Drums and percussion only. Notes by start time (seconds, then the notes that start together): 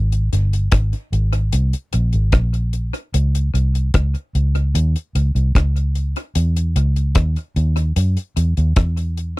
0.12 closed hi-hat
0.33 closed hi-hat
0.53 closed hi-hat
0.72 kick, cross-stick, closed hi-hat
0.93 closed hi-hat
1.13 closed hi-hat
1.33 closed hi-hat
1.52 closed hi-hat
1.73 closed hi-hat
1.93 closed hi-hat
2.13 closed hi-hat
2.32 kick, cross-stick, closed hi-hat
2.54 closed hi-hat
2.73 closed hi-hat
2.94 closed hi-hat
3.14 closed hi-hat
3.35 closed hi-hat
3.55 closed hi-hat
3.75 closed hi-hat
3.94 kick, cross-stick, closed hi-hat
4.15 closed hi-hat
4.35 closed hi-hat
4.55 closed hi-hat
4.75 closed hi-hat
4.96 closed hi-hat
5.15 closed hi-hat
5.36 closed hi-hat
5.55 kick, cross-stick, closed hi-hat
5.76 closed hi-hat
5.95 closed hi-hat
6.16 closed hi-hat
6.35 closed hi-hat
6.56 closed hi-hat
6.76 closed hi-hat
6.96 closed hi-hat
7.15 kick, cross-stick, closed hi-hat
7.36 closed hi-hat
7.56 closed hi-hat
7.77 closed hi-hat
7.96 closed hi-hat
8.17 closed hi-hat
8.37 closed hi-hat
8.57 closed hi-hat
8.76 kick, cross-stick, closed hi-hat
8.97 closed hi-hat
9.17 closed hi-hat